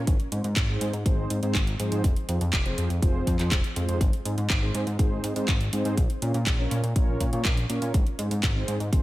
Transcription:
0.07 G#1, kick, closed hi-hat
0.20 closed hi-hat
0.32 G#2 C4 D#4 G#4 C5, closed hi-hat
0.44 G#2, closed hi-hat
0.57 G#1, kick, clap, closed hi-hat
0.69 G#2 C4 D#4 G#4 C5
0.81 G#2, closed hi-hat
0.93 G#2, closed hi-hat
1.06 G#1 G#2 C4 D#4 G#4 C5, kick, closed hi-hat
1.30 G#2, closed hi-hat
1.43 G#2 C4 D#4 G#4 C5, closed hi-hat
1.55 G#1, kick, clap, closed hi-hat
1.67 closed hi-hat
1.79 G#2 F3 C4 D#4 G#4 C5, closed hi-hat
1.92 G#2, closed hi-hat
2.04 F1, kick, closed hi-hat
2.16 closed hi-hat
2.29 F2 F3 C4 F4 G#4 C5, closed hi-hat
2.41 F2, closed hi-hat
2.53 F1, kick, clap, closed hi-hat
2.66 F3 C4 F4 G#4 C5, closed hi-hat
2.78 F2, closed hi-hat
2.90 F2, closed hi-hat
3.02 F1 F3 C4 F4 G#4 C5, kick, closed hi-hat
3.27 F2, kick, closed hi-hat
3.39 F2 F3 C4 F4 G#4 C5, clap, closed hi-hat
3.52 F1, kick, clap, closed hi-hat
3.64 closed hi-hat
3.76 F2 G#2 C4 F4 G#4 C5, closed hi-hat
3.88 F2, closed hi-hat
4.01 G#1, kick, closed hi-hat
4.13 closed hi-hat
4.25 G#2 C4 D#4 G#4 C5, closed hi-hat
4.38 G#2, closed hi-hat
4.50 G#1, kick, clap, closed hi-hat
4.62 G#2 C4 D#4 G#4 C5
4.75 G#2, closed hi-hat
4.87 G#2, closed hi-hat
4.99 G#1 G#2 C4 D#4 G#4 C5, kick, closed hi-hat
5.24 G#2, closed hi-hat
5.36 G#2 C4 D#4 G#4 C5, closed hi-hat
5.48 G#1, kick, clap, closed hi-hat
5.61 closed hi-hat
5.73 G#2 C4 D#4 G#4 C5, closed hi-hat
5.85 G#2, closed hi-hat
5.97 A#1, kick, closed hi-hat
6.10 closed hi-hat
6.22 A#2 C#4 F4 A#4 C#5, closed hi-hat
6.34 A#2, closed hi-hat
6.47 A#1, kick, clap, closed hi-hat
6.59 A#2 C#4 F4 A#4 C#5
6.71 A#2, closed hi-hat
6.83 A#2, closed hi-hat
6.96 A#1 A#2 C#4 F4 A#4 C#5, kick, closed hi-hat
7.20 A#2, kick, closed hi-hat
7.33 A#2 C#4 F4 A#4 C#5, closed hi-hat
7.45 A#1, kick, clap, closed hi-hat
7.57 closed hi-hat
7.70 A#2 C#4 F4 A#4 C#5, closed hi-hat
7.82 A#2, closed hi-hat
7.94 G#1, kick, closed hi-hat
8.07 closed hi-hat
8.19 G#2 C4 D#4 G#4 C5, closed hi-hat
8.31 G#2, closed hi-hat
8.43 G#1, kick, clap, closed hi-hat
8.56 G#2 C4 D#4 G#4 C5
8.68 G#2, closed hi-hat
8.80 G#2, closed hi-hat
8.93 G#1 G#2 C4 D#4 G#4 C5, kick, closed hi-hat

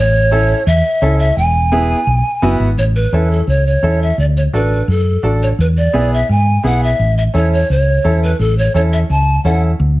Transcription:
Already playing: A1 C#5
0.31 C#4 E4 A4
0.67 E2 E5
1.02 C#2 C#4 E4 A4
1.19 E5
1.37 E1 G#5
1.72 B3 E4 G#4
2.07 B1
2.42 F#1 B3 E4 F#4
2.59 G#1
2.77 A1 C#5
2.96 B4
3.12 E2 C#4 E4 A4
3.31 A4
3.47 C#2 C#5
3.66 C#5
3.83 E2 C#4 E4 A4
4.02 E5
4.18 D2 D5
4.37 C#5
4.53 A1 D4 F#4 A4 B4
4.88 F#2 A4
5.23 A1 D4 F#4 A4
5.43 C#5
5.58 E2 B4
5.77 D5
5.93 B1 B3 E4 G#4
6.14 E5
6.29 G#2 G#5
6.63 B1 B3 E4 G#4 F#5
6.84 E5
6.99 A1
7.17 E5
7.34 E2 C#4 E4 A4 C#5
7.53 C#5
7.70 C#2 C#5
8.04 E2 C#4 E4 A4
8.23 B4
8.39 A1 A4
8.58 C#5
8.74 E2 C#4 E4 A4 C#5
8.93 E5
9.10 C#2 A5
9.44 E2 C#4 E4 A4 F#5
9.80 D2

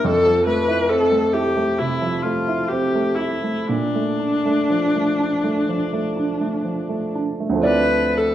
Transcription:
0.04 F2 A4
0.26 F3
0.46 A3 B4
0.68 E4
0.89 C4 A4
1.11 A3
1.33 E4 G4
1.56 A3
1.78 C3 E4
2.01 F3
2.22 A3 F4
2.48 E4
2.68 C4 G4
2.95 A3
3.15 E4
3.19 E4
3.44 A3
3.67 A#2 D4
3.95 A3
4.20 D4
4.45 A3
4.70 F3
4.95 A3
5.20 D4
5.44 A3
5.69 F3
5.93 A3
6.17 D4
6.41 A3
6.65 F3
6.89 A3
7.15 D4
7.40 A3
7.50 D2 F3
7.55 A3 C4
7.62 E4 B4 D5
8.17 A4

